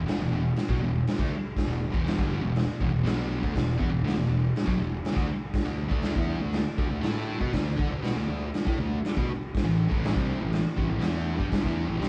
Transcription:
0.04 D2 D3 A3, crash
0.09 snare
0.17 E1 E2
0.21 B2
0.30 E1 E2 B2
0.56 snare, crash
0.69 B1 B2 F#3, kick
0.79 E1 E2 B2
1.07 snare, crash
1.19 D2 D3 A3, kick
1.57 kick, snare, crash
1.65 E1 E2 B2
1.90 E1 E2 B2 E3, kick
2.07 snare, crash
2.16 G1 G2 D3 G3, kick
2.42 E1 E2 B2
2.56 snare, crash
2.80 E1 E2 B2, kick
2.91 E1 E2 B2
3.03 B1 B2 F#3 B3, crash
3.07 snare
3.42 D2 D3 A3, kick
3.54 E1 E2 B2, kick, snare, crash
3.78 E2 E3 B3, kick
3.90 E1 E2 B2
4.03 D2 D3 A3
4.07 snare, crash
4.15 E1 E2 B2
4.27 E1 E2 B2
4.56 snare, crash
4.64 B1 B2 F#3, kick
4.74 E1 E2 B2
5.05 snare, crash
5.13 D2 D3 A3, kick
5.54 kick, snare, crash
5.65 D2 D3 A3
5.88 D2 D3 A3 D4, kick
6.02 snare, crash
6.14 E2 E3 B3 E4, kick
6.39 D2 D3 A3
6.53 snare, crash
6.78 D2 D3 A3, kick
6.89 D2 D3 A3
7.00 A2 A3 E4 A4, snare, crash
7.40 B2 B3 F#4, kick
7.53 D2 D3 A3, kick, snare, crash
7.76 D3 D4 A4, kick
7.90 D2 D3 A3
8.02 B2 B3 F#4, snare, crash
8.16 D2 D3 A3
8.28 D2 D3 A3
8.54 snare, crash
8.66 A2 A3 E4, kick
8.79 D2 D3 A3
9.05 snare, crash
9.16 B2 B3 F#4, kick
9.55 kick, snare, crash
9.64 A1 A2 E3
9.87 A2 E3 A3
9.91 A1, kick
10.04 snare, crash
10.14 C2 C3 G3 C4, kick
10.40 A1 A2 E3
10.53 snare, crash
10.76 A1 A2 E3, kick
10.89 A1 A2 E3
10.99 E3 B3 E4, snare, crash
11.03 E2
11.36 G2 G3 D4, kick
11.49 C2 C3 G3, kick, crash
11.53 snare
11.62 E2 E3 B3 E4, kick
11.86 A1 A2 E3
11.99 C2 C3 G3 C4, crash
12.03 snare

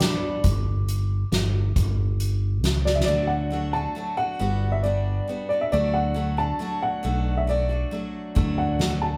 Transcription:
0.00 G3 B3 D4 A4, snare, closed hi-hat
0.44 G1, kick, closed hi-hat
0.89 closed hi-hat
1.32 G1, snare, closed hi-hat
1.76 G1, kick, closed hi-hat
2.20 closed hi-hat
2.63 C#2, snare, closed hi-hat
2.85 D5, snare
2.95 E5
3.00 snare
3.05 D2 D3 F#3 A3 D4 F#4 D5
3.27 F#5
3.50 F#3 A3 D4 F#4
3.73 A3 D4 F#4 A5
3.95 F#3 A3 D4 F#4
4.17 A3 D4 F#4 F#5
4.39 G1 G3 B3 D4 F#4
4.72 E5
4.83 G3 B3 D4 F#4 D5
5.28 G3 B3 D4 F#4
5.49 D4 F#4 D5
5.53 B3
5.61 E5
5.72 D2 D3 F#3 A3 D4 F#4 D5
5.94 F#5
6.14 F#3 A3 D4 F#4
6.37 A3 D4 F#4 A5
6.59 F#3 A3 D4 F#4
6.82 F#5
7.03 B1 B2 F#3 A3 D4 F#4
7.37 E5
7.47 F#3 A3 D4 F#4 D5
7.69 A3 D4 F#4
7.91 F#3 A3 D4 F#4
8.35 D2 D3 F#3 A3 D4 F#4, kick, ride
8.58 F#5
8.79 F#3 A3 D4 F#4, snare, ride
9.02 A5

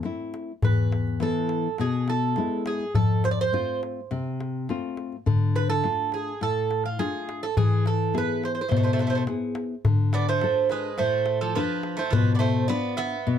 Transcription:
0.03 A3 C4 E4, darbuka tek
0.34 darbuka tek
0.62 E2 B4, darbuka dum
0.92 darbuka tek
1.07 darbuka tek
1.20 E3 B3 E4 A4, darbuka tek
1.49 darbuka tek
1.78 B2 G#4, darbuka tek
2.08 A4, darbuka tek
2.36 G#3 B3 E4, darbuka tek
2.66 G#4, darbuka tek
2.80 darbuka tek
2.95 F2 A4, darbuka dum
3.24 C5, darbuka tek
3.31 D5
3.39 C5, darbuka tek
3.53 A3 C4 F4, darbuka tek
3.83 darbuka tek
4.11 C3, darbuka tek
4.41 darbuka tek
4.69 A3 C4 F4, darbuka tek
4.97 darbuka tek
5.12 darbuka tek
5.26 D3, darbuka dum
5.56 B4, darbuka tek
5.70 A4
5.84 A3 D4 F4, darbuka tek
6.12 G#4, darbuka tek
6.41 A2 A4, darbuka tek
6.71 darbuka tek
6.86 F4
6.99 A3 D4 F4 G#4, darbuka tek
7.29 darbuka tek
7.43 A4, darbuka tek
7.57 E3 G#4, darbuka dum
7.86 A4, darbuka tek
8.14 B3 E4 G#4, darbuka tek
8.18 B4
8.29 darbuka tek
8.44 C5, darbuka tek
8.55 C5
8.61 C5
8.68 B2 A3 C5, darbuka tek, darbuka dum
8.76 A3 C5
8.83 A3 C5, darbuka tek
8.93 A3 C5
8.99 A3 C5, darbuka tek
9.07 A3 C5
9.15 A3 C5
9.27 B3 E4 G#4, darbuka tek
9.55 darbuka tek
9.85 D3, darbuka dum
10.13 B3 D5, darbuka tek
10.28 A3 C5, darbuka tek
10.41 D4 F4 A4, darbuka tek
10.70 G#3 B4, darbuka tek
10.98 A2 A3 C5, darbuka tek
11.26 darbuka tek
11.41 F3 A4
11.55 F3 D4 F4 A4 B4, darbuka tek
11.83 darbuka tek
11.97 A3 C5, darbuka tek
12.11 B2 F3 B4, darbuka dum
12.35 B3 D5
12.39 A3 C5, darbuka tek
12.56 darbuka tek
12.68 B3 D4 F4 D5, darbuka tek
12.97 B3 E5, darbuka tek
13.27 B2, darbuka tek

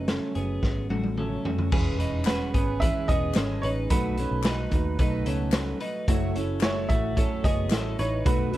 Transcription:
Already playing: F#1
0.08 C#3 F#3 A3 C#4 A4, snare, closed hi-hat
0.35 F#1 F#3 A3 B3 C#4 G#4, closed hi-hat
0.63 G#1, kick, snare
0.90 A1 A3 F#4, high tom
1.04 high tom
1.18 C#3 F#3 A3 C#4 A4, mid tom
1.45 F#3 A3 C#4 F#4, floor tom
1.59 floor tom
1.72 E1 E3 G#3 B3 C#4 G#4 B4, kick, crash
2.00 D#4 B4, closed hi-hat
2.25 G#3 B3 C#4 F#4 B4, snare, clap, closed hi-hat
2.29 G#4 B4
2.54 G#1 B3 C#4 G#4 B4, kick, closed hi-hat
2.80 E3 G#3 C#4 E4 G#4 B4 E5, kick, closed hi-hat
2.84 B4
3.08 E1 B3 G#4 D#5, kick, closed hi-hat
3.34 G#1 G#3 C#4 G#4 A4 B4, snare, clap, closed hi-hat
3.62 A1 D#4 B4 C#5, closed hi-hat
3.90 B1 B2 F#3 A3 D#4 F#4 B4, kick, closed hi-hat
4.17 A3 C#4 D#4 F#4 A4 B4, closed hi-hat
4.31 B1
4.43 A3 D#4 F#4 B4, snare, clap, closed hi-hat
4.47 D#4
4.71 D#2 A3 D#4 F#4 B4, kick, closed hi-hat
4.99 B1 B2 F#3 A3 D#4 F#4 B4, kick, closed hi-hat
5.26 C#2 C#4 A4, closed hi-hat
5.52 A3 D#4 F#4 B4, snare, clap, closed hi-hat
5.80 D#4 B4, closed hi-hat
6.08 F#1 F#3 A3 E4 F#4 C#5, kick, closed hi-hat
6.35 C#4 E4 F#4 A4 C#5, closed hi-hat
6.60 A3 E4 F#4 C#5, snare, clap, closed hi-hat
6.89 A1 A3 E4 F#4 C#5 E5, kick, closed hi-hat
7.16 F#3 A3 C#4 E4 F#4 A4 C#5, kick, closed hi-hat
7.44 F#1 B3 G#4 D#5, kick, closed hi-hat
7.70 A1 A3 C#4 E4 F#4 A4 C#5, snare, clap, closed hi-hat
7.99 A1 D#4 B4 C#5, closed hi-hat
8.24 B1 B2 F#3 A3 D#4 F#4 B4, kick, closed hi-hat
8.52 A3 D#4 F#4 A4 B4, closed hi-hat

